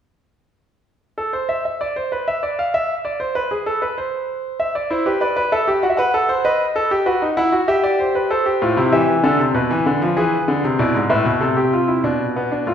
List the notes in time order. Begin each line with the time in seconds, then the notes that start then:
1.18 A4
1.33 C5
1.49 E5
1.65 E5
1.81 D5
1.96 C5
2.12 B4
2.28 E5
2.43 D5
2.59 F5
2.74 E5
3.05 D5
3.20 C5
3.35 B4
3.51 G#4
3.66 A4
3.82 B4
3.98 C5
4.60 E5
4.75 D5
4.91 E4 C5
5.06 G4 B4
5.21 B4 D5
5.37 B4
5.52 A4 E5
5.68 G4
5.83 F#4 F#5
5.90 E5
5.97 B4 F#5
6.14 A4
6.29 C5
6.45 B4 D#5
6.76 A4
6.91 G4
7.06 F#4 B4
7.22 D#4
7.37 E4 F#5
7.52 F#4
7.68 G4 E5
7.84 D5
8.00 C5
8.15 B4
8.31 A4 C5
8.46 G4
8.62 A2 F4
8.77 C3 E4
8.92 E3 G4 E5
9.08 E3
9.24 D3 A4
9.39 C3
9.55 B2 B4
9.71 E3
9.86 D3
10.02 F3
10.17 E3 G#4 B4
10.48 D3
10.64 C3
10.79 B2 E4 D5
10.95 G#2
11.10 A2 B4 E5
11.25 B2
11.41 C3 A4
11.57 G4
11.73 F4
11.88 E4
12.04 B2 D4
12.36 B3
12.52 D4
12.67 A2 F4